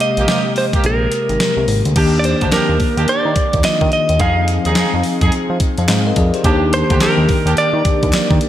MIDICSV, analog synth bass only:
0, 0, Header, 1, 2, 480
1, 0, Start_track
1, 0, Tempo, 560748
1, 1680, Time_signature, 4, 2, 24, 8
1, 7266, End_track
2, 0, Start_track
2, 0, Title_t, "Analog synth bass"
2, 0, Program_c, 0, 38
2, 150, Note_on_c, 0, 34, 82
2, 226, Note_off_c, 0, 34, 0
2, 721, Note_on_c, 0, 34, 100
2, 924, Note_off_c, 0, 34, 0
2, 1109, Note_on_c, 0, 32, 94
2, 1185, Note_off_c, 0, 32, 0
2, 1344, Note_on_c, 0, 36, 89
2, 1423, Note_off_c, 0, 36, 0
2, 1436, Note_on_c, 0, 32, 94
2, 1565, Note_off_c, 0, 32, 0
2, 1588, Note_on_c, 0, 38, 87
2, 1665, Note_off_c, 0, 38, 0
2, 1677, Note_on_c, 0, 39, 102
2, 2009, Note_off_c, 0, 39, 0
2, 2070, Note_on_c, 0, 38, 99
2, 2146, Note_off_c, 0, 38, 0
2, 2152, Note_on_c, 0, 39, 46
2, 2214, Note_off_c, 0, 39, 0
2, 2303, Note_on_c, 0, 39, 91
2, 2382, Note_off_c, 0, 39, 0
2, 2542, Note_on_c, 0, 39, 100
2, 2622, Note_off_c, 0, 39, 0
2, 2630, Note_on_c, 0, 51, 49
2, 2693, Note_off_c, 0, 51, 0
2, 2784, Note_on_c, 0, 51, 100
2, 2863, Note_off_c, 0, 51, 0
2, 3027, Note_on_c, 0, 39, 93
2, 3105, Note_off_c, 0, 39, 0
2, 3264, Note_on_c, 0, 51, 102
2, 3343, Note_off_c, 0, 51, 0
2, 3504, Note_on_c, 0, 39, 90
2, 3583, Note_off_c, 0, 39, 0
2, 3594, Note_on_c, 0, 41, 110
2, 3927, Note_off_c, 0, 41, 0
2, 3984, Note_on_c, 0, 39, 87
2, 4063, Note_off_c, 0, 39, 0
2, 4078, Note_on_c, 0, 41, 46
2, 4139, Note_off_c, 0, 41, 0
2, 4226, Note_on_c, 0, 41, 103
2, 4304, Note_off_c, 0, 41, 0
2, 4462, Note_on_c, 0, 41, 92
2, 4542, Note_off_c, 0, 41, 0
2, 4553, Note_on_c, 0, 53, 50
2, 4615, Note_off_c, 0, 53, 0
2, 4706, Note_on_c, 0, 53, 92
2, 4784, Note_off_c, 0, 53, 0
2, 4948, Note_on_c, 0, 41, 89
2, 5025, Note_off_c, 0, 41, 0
2, 5036, Note_on_c, 0, 44, 84
2, 5241, Note_off_c, 0, 44, 0
2, 5278, Note_on_c, 0, 41, 89
2, 5406, Note_off_c, 0, 41, 0
2, 5517, Note_on_c, 0, 39, 110
2, 5849, Note_off_c, 0, 39, 0
2, 5911, Note_on_c, 0, 38, 94
2, 5987, Note_off_c, 0, 38, 0
2, 5993, Note_on_c, 0, 39, 47
2, 6055, Note_off_c, 0, 39, 0
2, 6142, Note_on_c, 0, 39, 92
2, 6222, Note_off_c, 0, 39, 0
2, 6380, Note_on_c, 0, 39, 100
2, 6461, Note_off_c, 0, 39, 0
2, 6468, Note_on_c, 0, 51, 52
2, 6531, Note_off_c, 0, 51, 0
2, 6619, Note_on_c, 0, 51, 101
2, 6700, Note_off_c, 0, 51, 0
2, 6874, Note_on_c, 0, 39, 100
2, 6948, Note_off_c, 0, 39, 0
2, 7109, Note_on_c, 0, 51, 101
2, 7186, Note_off_c, 0, 51, 0
2, 7266, End_track
0, 0, End_of_file